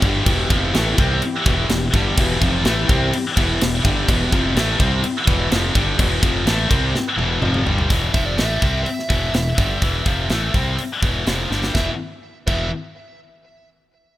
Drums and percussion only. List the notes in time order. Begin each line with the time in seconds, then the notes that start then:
0.02 kick, crash
0.26 kick, crash
0.50 kick, crash
0.75 snare, crash
0.98 kick, crash
1.22 crash
1.46 kick, crash
1.70 snare, crash
1.94 kick, crash
2.17 kick, crash
2.42 kick, crash
2.65 snare, crash
2.89 kick, crash
3.13 crash
3.37 kick, crash
3.61 snare, crash
3.85 kick, crash
4.09 kick, crash
4.32 kick, crash
4.57 snare, crash
4.80 kick, crash
5.04 crash
5.27 kick, crash
5.52 snare, crash
5.75 kick, crash
5.99 kick, crash
6.23 kick, crash
6.47 snare, crash
6.71 kick, crash
6.95 snare
7.19 high tom
7.42 mid tom
7.54 mid tom
7.67 floor tom
7.78 floor tom
7.90 kick, open hi-hat
8.14 kick, open hi-hat
8.38 snare, open hi-hat
8.62 kick, open hi-hat
8.86 open hi-hat
8.99 snare
9.10 kick, open hi-hat
9.34 snare, open hi-hat
9.58 kick, open hi-hat
9.82 kick, open hi-hat
10.06 kick, open hi-hat
10.30 snare, open hi-hat
10.54 kick, open hi-hat
10.79 open hi-hat
11.03 kick, open hi-hat
11.27 snare, open hi-hat
11.52 snare
11.64 snare
11.75 kick, snare
12.48 kick, crash